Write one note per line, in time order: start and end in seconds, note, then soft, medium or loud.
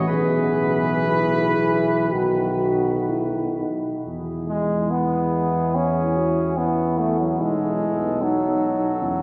0.08 2.09 B1 medium
0.08 2.14 E3 medium
0.08 1.00 B3 medium
0.08 2.12 G#4 medium
0.08 3.05 B4 loud
1.12 2.14 E4 medium
2.12 3.68 B1 medium
2.12 3.71 D#3 medium
2.12 3.11 F#4 medium
2.12 3.71 F#4 medium
3.09 3.58 E4 medium
3.60 4.05 D#4 medium
4.06 7.37 E2 medium
4.06 8.17 E4 medium
4.06 7.36 G#4 medium
4.48 4.92 G#3 medium
4.91 5.76 B3 medium
5.75 6.59 C#4 medium
5.75 6.18 E4 medium
6.17 6.59 F#4 medium
6.57 7.00 B3 medium
6.57 7.42 E4 medium
6.98 7.19 A3 medium
7.20 7.42 F#3 medium
7.40 9.04 B1 medium
7.40 8.23 G#3 medium
7.40 7.80 D#4 medium
7.40 9.22 A4 medium
7.81 8.24 B3 medium
8.22 9.22 F#3 medium
8.22 9.02 D#4 medium
8.22 9.04 D#4 medium
9.02 9.22 E2 medium
9.02 9.22 C#4 medium
9.02 9.22 E4 medium